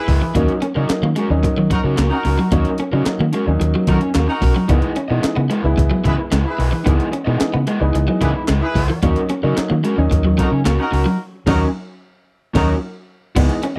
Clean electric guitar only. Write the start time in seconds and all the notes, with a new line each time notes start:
0.08 muted clean electric guitar stroke
0.22 E3
0.35 A#3
0.62 C#4
0.76 muted clean electric guitar stroke
0.90 muted clean electric guitar stroke
1.03 A#3
1.16 G#3
1.44 muted clean electric guitar stroke
1.58 F#3
1.71 F#3
1.98 A#3
2.25 muted clean electric guitar stroke
2.39 F#3
2.52 A#3
2.80 C#4
2.93 muted clean electric guitar stroke
3.07 muted clean electric guitar stroke
3.21 A#3
3.34 G#3
3.62 muted clean electric guitar stroke
3.75 F#3
3.89 F#3
4.16 A#3
4.44 muted clean electric guitar stroke
4.56 F#3
4.70 B3
4.96 C#4
5.10 muted clean electric guitar stroke
5.23 muted clean electric guitar stroke
5.36 B3
5.50 G#3
5.78 muted clean electric guitar stroke
5.91 F#3
6.04 E3
6.32 G#3
6.58 muted clean electric guitar stroke
6.72 E3
6.86 B3
7.13 C#4
7.27 muted clean electric guitar stroke
7.41 muted clean electric guitar stroke
7.54 B3
7.68 G#3
7.95 muted clean electric guitar stroke
8.08 F#3
8.21 E3
8.49 G#3
8.76 muted clean electric guitar stroke
8.90 E3
9.03 A#3
9.30 C#4
9.43 muted clean electric guitar stroke
9.57 muted clean electric guitar stroke
9.70 A#3
9.84 G#3
10.11 muted clean electric guitar stroke
10.25 F#3
10.38 F#3
10.66 A#3
10.92 muted clean electric guitar stroke
11.06 F#3
13.36 B3
13.63 C#4